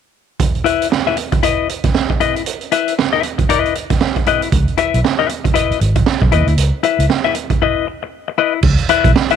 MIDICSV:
0, 0, Header, 1, 6, 480
1, 0, Start_track
1, 0, Key_signature, 4, "minor"
1, 0, Tempo, 514580
1, 369, Time_signature, 4, 2, 24, 8
1, 8731, End_track
2, 0, Start_track
2, 0, Title_t, "Clean electric guitar"
2, 0, Program_c, 0, 27
2, 601, Note_on_c, 0, 64, 77
2, 610, Note_on_c, 0, 71, 83
2, 616, Note_on_c, 0, 76, 89
2, 804, Note_off_c, 0, 64, 0
2, 809, Note_off_c, 0, 71, 0
2, 812, Note_off_c, 0, 76, 0
2, 998, Note_on_c, 0, 76, 67
2, 1000, Note_on_c, 0, 71, 55
2, 1009, Note_on_c, 0, 64, 59
2, 1081, Note_off_c, 0, 64, 0
2, 1088, Note_off_c, 0, 71, 0
2, 1095, Note_off_c, 0, 76, 0
2, 1333, Note_on_c, 0, 64, 79
2, 1340, Note_on_c, 0, 71, 74
2, 1345, Note_on_c, 0, 75, 88
2, 1556, Note_off_c, 0, 64, 0
2, 1560, Note_off_c, 0, 71, 0
2, 1562, Note_off_c, 0, 75, 0
2, 2055, Note_on_c, 0, 64, 74
2, 2060, Note_on_c, 0, 71, 74
2, 2060, Note_on_c, 0, 75, 81
2, 2188, Note_off_c, 0, 75, 0
2, 2195, Note_off_c, 0, 71, 0
2, 2252, Note_off_c, 0, 64, 0
2, 2536, Note_on_c, 0, 64, 66
2, 2540, Note_on_c, 0, 71, 78
2, 2543, Note_on_c, 0, 76, 88
2, 2732, Note_off_c, 0, 64, 0
2, 2735, Note_off_c, 0, 71, 0
2, 2736, Note_off_c, 0, 76, 0
2, 2917, Note_on_c, 0, 76, 77
2, 2924, Note_on_c, 0, 71, 69
2, 2932, Note_on_c, 0, 64, 65
2, 3007, Note_off_c, 0, 64, 0
2, 3010, Note_off_c, 0, 71, 0
2, 3022, Note_off_c, 0, 76, 0
2, 3257, Note_on_c, 0, 64, 79
2, 3265, Note_on_c, 0, 71, 75
2, 3266, Note_on_c, 0, 75, 82
2, 3479, Note_off_c, 0, 64, 0
2, 3483, Note_off_c, 0, 71, 0
2, 3484, Note_off_c, 0, 75, 0
2, 3983, Note_on_c, 0, 64, 72
2, 3988, Note_on_c, 0, 71, 90
2, 3993, Note_on_c, 0, 75, 85
2, 4117, Note_off_c, 0, 75, 0
2, 4118, Note_off_c, 0, 71, 0
2, 4177, Note_off_c, 0, 64, 0
2, 4454, Note_on_c, 0, 64, 70
2, 4461, Note_on_c, 0, 71, 79
2, 4466, Note_on_c, 0, 76, 84
2, 4652, Note_off_c, 0, 64, 0
2, 4656, Note_off_c, 0, 71, 0
2, 4658, Note_off_c, 0, 76, 0
2, 4839, Note_on_c, 0, 76, 75
2, 4844, Note_on_c, 0, 71, 72
2, 4848, Note_on_c, 0, 64, 52
2, 4925, Note_off_c, 0, 64, 0
2, 4925, Note_off_c, 0, 71, 0
2, 4940, Note_off_c, 0, 76, 0
2, 5167, Note_on_c, 0, 64, 77
2, 5175, Note_on_c, 0, 71, 72
2, 5181, Note_on_c, 0, 75, 80
2, 5395, Note_off_c, 0, 64, 0
2, 5399, Note_off_c, 0, 71, 0
2, 5402, Note_off_c, 0, 75, 0
2, 5895, Note_on_c, 0, 64, 71
2, 5903, Note_on_c, 0, 71, 79
2, 5907, Note_on_c, 0, 75, 81
2, 6038, Note_off_c, 0, 75, 0
2, 6043, Note_off_c, 0, 71, 0
2, 6093, Note_off_c, 0, 64, 0
2, 6374, Note_on_c, 0, 64, 74
2, 6384, Note_on_c, 0, 71, 78
2, 6388, Note_on_c, 0, 76, 72
2, 6572, Note_off_c, 0, 64, 0
2, 6577, Note_off_c, 0, 71, 0
2, 6579, Note_off_c, 0, 76, 0
2, 6757, Note_on_c, 0, 76, 79
2, 6762, Note_on_c, 0, 71, 75
2, 6770, Note_on_c, 0, 64, 64
2, 6854, Note_off_c, 0, 64, 0
2, 6858, Note_off_c, 0, 71, 0
2, 6868, Note_off_c, 0, 76, 0
2, 7107, Note_on_c, 0, 64, 73
2, 7111, Note_on_c, 0, 71, 63
2, 7118, Note_on_c, 0, 75, 80
2, 7324, Note_off_c, 0, 64, 0
2, 7327, Note_off_c, 0, 71, 0
2, 7330, Note_off_c, 0, 75, 0
2, 7816, Note_on_c, 0, 64, 84
2, 7822, Note_on_c, 0, 71, 82
2, 7829, Note_on_c, 0, 75, 76
2, 7956, Note_off_c, 0, 75, 0
2, 7967, Note_off_c, 0, 71, 0
2, 8013, Note_off_c, 0, 64, 0
2, 8295, Note_on_c, 0, 64, 87
2, 8300, Note_on_c, 0, 71, 95
2, 8305, Note_on_c, 0, 76, 96
2, 8492, Note_off_c, 0, 64, 0
2, 8494, Note_off_c, 0, 71, 0
2, 8497, Note_off_c, 0, 76, 0
2, 8682, Note_on_c, 0, 76, 83
2, 8686, Note_on_c, 0, 71, 76
2, 8689, Note_on_c, 0, 64, 73
2, 8731, Note_off_c, 0, 64, 0
2, 8731, Note_off_c, 0, 71, 0
2, 8731, Note_off_c, 0, 76, 0
2, 8731, End_track
3, 0, Start_track
3, 0, Title_t, "Fingered electric bass"
3, 0, Program_c, 1, 33
3, 4219, Note_on_c, 1, 37, 106
3, 4331, Note_off_c, 1, 37, 0
3, 4609, Note_on_c, 1, 35, 73
3, 4681, Note_off_c, 1, 35, 0
3, 5421, Note_on_c, 1, 32, 85
3, 5609, Note_off_c, 1, 32, 0
3, 5799, Note_on_c, 1, 35, 86
3, 5874, Note_off_c, 1, 35, 0
3, 5894, Note_on_c, 1, 39, 89
3, 6008, Note_off_c, 1, 39, 0
3, 6035, Note_on_c, 1, 38, 80
3, 6112, Note_off_c, 1, 38, 0
3, 6131, Note_on_c, 1, 37, 95
3, 6246, Note_off_c, 1, 37, 0
3, 6518, Note_on_c, 1, 37, 76
3, 6594, Note_off_c, 1, 37, 0
3, 8051, Note_on_c, 1, 37, 96
3, 8166, Note_off_c, 1, 37, 0
3, 8437, Note_on_c, 1, 35, 82
3, 8513, Note_off_c, 1, 35, 0
3, 8731, End_track
4, 0, Start_track
4, 0, Title_t, "Muted clean electric guitar strokes"
4, 842, Note_on_c, 9, 29, 44
4, 935, Note_off_c, 9, 29, 0
4, 1092, Note_on_c, 9, 29, 48
4, 1185, Note_off_c, 9, 29, 0
4, 1233, Note_on_c, 9, 29, 43
4, 1326, Note_off_c, 9, 29, 0
4, 1578, Note_on_c, 9, 29, 40
4, 1672, Note_off_c, 9, 29, 0
4, 1720, Note_on_c, 9, 29, 39
4, 1814, Note_off_c, 9, 29, 0
4, 1964, Note_on_c, 9, 29, 38
4, 2057, Note_off_c, 9, 29, 0
4, 2199, Note_on_c, 9, 29, 33
4, 2292, Note_off_c, 9, 29, 0
4, 2784, Note_on_c, 9, 29, 34
4, 2877, Note_off_c, 9, 29, 0
4, 3019, Note_on_c, 9, 29, 40
4, 3112, Note_off_c, 9, 29, 0
4, 3155, Note_on_c, 9, 29, 37
4, 3248, Note_off_c, 9, 29, 0
4, 3497, Note_on_c, 9, 29, 36
4, 3590, Note_off_c, 9, 29, 0
4, 3640, Note_on_c, 9, 29, 37
4, 3733, Note_off_c, 9, 29, 0
4, 3889, Note_on_c, 9, 29, 39
4, 3982, Note_off_c, 9, 29, 0
4, 4128, Note_on_c, 9, 29, 34
4, 4221, Note_off_c, 9, 29, 0
4, 4703, Note_on_c, 9, 29, 39
4, 4797, Note_off_c, 9, 29, 0
4, 4936, Note_on_c, 9, 29, 47
4, 5029, Note_off_c, 9, 29, 0
4, 5078, Note_on_c, 9, 29, 41
4, 5172, Note_off_c, 9, 29, 0
4, 5405, Note_on_c, 9, 29, 37
4, 5498, Note_off_c, 9, 29, 0
4, 5558, Note_on_c, 9, 29, 35
4, 5651, Note_off_c, 9, 29, 0
4, 5802, Note_on_c, 9, 29, 42
4, 5896, Note_off_c, 9, 29, 0
4, 6049, Note_on_c, 9, 29, 33
4, 6142, Note_off_c, 9, 29, 0
4, 6614, Note_on_c, 9, 29, 35
4, 6707, Note_off_c, 9, 29, 0
4, 6866, Note_on_c, 9, 29, 37
4, 6959, Note_off_c, 9, 29, 0
4, 7004, Note_on_c, 9, 29, 40
4, 7097, Note_off_c, 9, 29, 0
4, 7342, Note_on_c, 9, 29, 41
4, 7436, Note_off_c, 9, 29, 0
4, 7489, Note_on_c, 9, 29, 44
4, 7582, Note_off_c, 9, 29, 0
4, 7725, Note_on_c, 9, 29, 44
4, 7818, Note_off_c, 9, 29, 0
4, 7968, Note_on_c, 9, 29, 37
4, 8061, Note_off_c, 9, 29, 0
4, 8731, End_track
5, 0, Start_track
5, 0, Title_t, "Muted fingered electric bass strokes"
5, 5325, Note_on_c, 9, 29, 44
5, 5419, Note_off_c, 9, 29, 0
5, 8731, End_track
6, 0, Start_track
6, 0, Title_t, "Drums"
6, 370, Note_on_c, 9, 36, 104
6, 370, Note_on_c, 9, 42, 93
6, 464, Note_off_c, 9, 36, 0
6, 464, Note_off_c, 9, 42, 0
6, 512, Note_on_c, 9, 42, 29
6, 605, Note_off_c, 9, 42, 0
6, 615, Note_on_c, 9, 42, 61
6, 708, Note_off_c, 9, 42, 0
6, 762, Note_on_c, 9, 42, 52
6, 856, Note_off_c, 9, 42, 0
6, 857, Note_on_c, 9, 38, 95
6, 951, Note_off_c, 9, 38, 0
6, 1088, Note_on_c, 9, 42, 71
6, 1182, Note_off_c, 9, 42, 0
6, 1232, Note_on_c, 9, 42, 48
6, 1235, Note_on_c, 9, 36, 93
6, 1325, Note_off_c, 9, 42, 0
6, 1328, Note_off_c, 9, 36, 0
6, 1334, Note_on_c, 9, 42, 89
6, 1427, Note_off_c, 9, 42, 0
6, 1580, Note_on_c, 9, 42, 54
6, 1673, Note_off_c, 9, 42, 0
6, 1712, Note_on_c, 9, 42, 51
6, 1716, Note_on_c, 9, 36, 92
6, 1719, Note_on_c, 9, 38, 29
6, 1806, Note_off_c, 9, 42, 0
6, 1810, Note_off_c, 9, 36, 0
6, 1812, Note_off_c, 9, 38, 0
6, 1815, Note_on_c, 9, 38, 111
6, 1908, Note_off_c, 9, 38, 0
6, 1957, Note_on_c, 9, 36, 83
6, 2051, Note_off_c, 9, 36, 0
6, 2057, Note_on_c, 9, 42, 62
6, 2150, Note_off_c, 9, 42, 0
6, 2203, Note_on_c, 9, 42, 43
6, 2295, Note_off_c, 9, 42, 0
6, 2295, Note_on_c, 9, 42, 89
6, 2388, Note_off_c, 9, 42, 0
6, 2433, Note_on_c, 9, 42, 33
6, 2527, Note_off_c, 9, 42, 0
6, 2535, Note_on_c, 9, 42, 63
6, 2629, Note_off_c, 9, 42, 0
6, 2684, Note_on_c, 9, 42, 47
6, 2777, Note_off_c, 9, 42, 0
6, 2787, Note_on_c, 9, 38, 102
6, 2880, Note_off_c, 9, 38, 0
6, 3014, Note_on_c, 9, 42, 70
6, 3107, Note_off_c, 9, 42, 0
6, 3159, Note_on_c, 9, 42, 44
6, 3160, Note_on_c, 9, 36, 94
6, 3253, Note_off_c, 9, 36, 0
6, 3253, Note_off_c, 9, 42, 0
6, 3260, Note_on_c, 9, 42, 89
6, 3353, Note_off_c, 9, 42, 0
6, 3410, Note_on_c, 9, 42, 32
6, 3501, Note_off_c, 9, 42, 0
6, 3501, Note_on_c, 9, 42, 55
6, 3594, Note_off_c, 9, 42, 0
6, 3638, Note_on_c, 9, 42, 48
6, 3641, Note_on_c, 9, 36, 84
6, 3644, Note_on_c, 9, 38, 29
6, 3731, Note_off_c, 9, 42, 0
6, 3735, Note_off_c, 9, 36, 0
6, 3737, Note_off_c, 9, 38, 0
6, 3739, Note_on_c, 9, 38, 112
6, 3832, Note_off_c, 9, 38, 0
6, 3882, Note_on_c, 9, 36, 81
6, 3884, Note_on_c, 9, 42, 32
6, 3975, Note_off_c, 9, 36, 0
6, 3977, Note_off_c, 9, 42, 0
6, 3977, Note_on_c, 9, 42, 60
6, 4070, Note_off_c, 9, 42, 0
6, 4123, Note_on_c, 9, 42, 45
6, 4216, Note_off_c, 9, 42, 0
6, 4217, Note_on_c, 9, 42, 89
6, 4219, Note_on_c, 9, 36, 110
6, 4310, Note_off_c, 9, 42, 0
6, 4312, Note_off_c, 9, 36, 0
6, 4362, Note_on_c, 9, 42, 33
6, 4454, Note_off_c, 9, 42, 0
6, 4454, Note_on_c, 9, 42, 60
6, 4547, Note_off_c, 9, 42, 0
6, 4608, Note_on_c, 9, 42, 49
6, 4702, Note_off_c, 9, 42, 0
6, 4707, Note_on_c, 9, 38, 93
6, 4800, Note_off_c, 9, 38, 0
6, 4938, Note_on_c, 9, 42, 64
6, 5031, Note_off_c, 9, 42, 0
6, 5083, Note_on_c, 9, 36, 95
6, 5085, Note_on_c, 9, 42, 48
6, 5177, Note_off_c, 9, 36, 0
6, 5178, Note_off_c, 9, 42, 0
6, 5180, Note_on_c, 9, 42, 91
6, 5273, Note_off_c, 9, 42, 0
6, 5330, Note_on_c, 9, 42, 31
6, 5421, Note_off_c, 9, 42, 0
6, 5421, Note_on_c, 9, 42, 54
6, 5514, Note_off_c, 9, 42, 0
6, 5555, Note_on_c, 9, 42, 52
6, 5561, Note_on_c, 9, 36, 90
6, 5648, Note_off_c, 9, 42, 0
6, 5654, Note_off_c, 9, 36, 0
6, 5656, Note_on_c, 9, 38, 108
6, 5749, Note_off_c, 9, 38, 0
6, 5799, Note_on_c, 9, 36, 91
6, 5892, Note_off_c, 9, 36, 0
6, 5894, Note_on_c, 9, 42, 59
6, 5988, Note_off_c, 9, 42, 0
6, 6040, Note_on_c, 9, 42, 42
6, 6133, Note_off_c, 9, 42, 0
6, 6135, Note_on_c, 9, 42, 92
6, 6228, Note_off_c, 9, 42, 0
6, 6374, Note_on_c, 9, 42, 54
6, 6468, Note_off_c, 9, 42, 0
6, 6526, Note_on_c, 9, 42, 50
6, 6620, Note_off_c, 9, 42, 0
6, 6621, Note_on_c, 9, 38, 100
6, 6714, Note_off_c, 9, 38, 0
6, 6853, Note_on_c, 9, 42, 67
6, 6946, Note_off_c, 9, 42, 0
6, 6997, Note_on_c, 9, 36, 83
6, 6997, Note_on_c, 9, 42, 46
6, 7090, Note_off_c, 9, 36, 0
6, 7090, Note_off_c, 9, 42, 0
6, 8046, Note_on_c, 9, 49, 101
6, 8051, Note_on_c, 9, 36, 119
6, 8140, Note_off_c, 9, 49, 0
6, 8144, Note_off_c, 9, 36, 0
6, 8194, Note_on_c, 9, 42, 55
6, 8287, Note_off_c, 9, 42, 0
6, 8289, Note_on_c, 9, 42, 75
6, 8383, Note_off_c, 9, 42, 0
6, 8436, Note_on_c, 9, 36, 103
6, 8437, Note_on_c, 9, 42, 55
6, 8529, Note_off_c, 9, 36, 0
6, 8531, Note_off_c, 9, 42, 0
6, 8541, Note_on_c, 9, 38, 112
6, 8635, Note_off_c, 9, 38, 0
6, 8677, Note_on_c, 9, 42, 52
6, 8731, Note_off_c, 9, 42, 0
6, 8731, End_track
0, 0, End_of_file